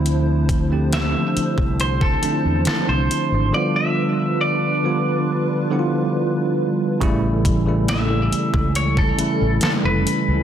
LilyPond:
<<
  \new Staff \with { instrumentName = "Clean electric guitar" } { \time 4/4 \key a \minor \tempo 4 = 69 r4 e''4 c''16 a'8. a'16 c''8. | d''16 e''8. d''2~ d''8 r8 | r4 e''4 cis''16 a'8. a'16 b'8. | }
  \new Staff \with { instrumentName = "Analog synth pad" } { \time 4/4 \key a \minor <f d' e' c''>1 | <g d' f' b'>1 | <g cis' e' a'>1 | }
  \new Staff \with { instrumentName = "Tine electric piano" } { \clef bass \time 4/4 \key a \minor <d f a c' e'>8 r16 <d f a c' g'>4~ <d f a c' g'>16 r8 <d f a c' d' e'>4 r8 | <d f g b f'>4 r8 <d f g b f'>8. r16 <d f g b e' f'>4 r8 | <cis e g a e'>8 r16 <cis e g a e'>4~ <cis e g a e'>16 r8 <cis e g a e'>4 r8 | }
  \new Staff \with { instrumentName = "Fretless electric bass" } { \clef bass \time 4/4 \key a \minor d,4. r16 c,8. r16 e,16 r16 c,16 r16 gis,,16 | r1 | a,,4. r16 cis,8. r16 a,,16 r16 f,,16 r16 cis,16 | }
  \new DrumStaff \with { instrumentName = "Drums" } \drummode { \time 4/4 hh8 <hh bd>8 <hh sn>8 hh16 bd16 hh16 bd16 hh8 <hh sn>8 hh8 | r4 r4 r4 r4 | <hh bd>8 <hh bd>8 <hh sn>8 hh16 bd16 hh16 bd16 hh8 <hh sn>8 hh8 | }
>>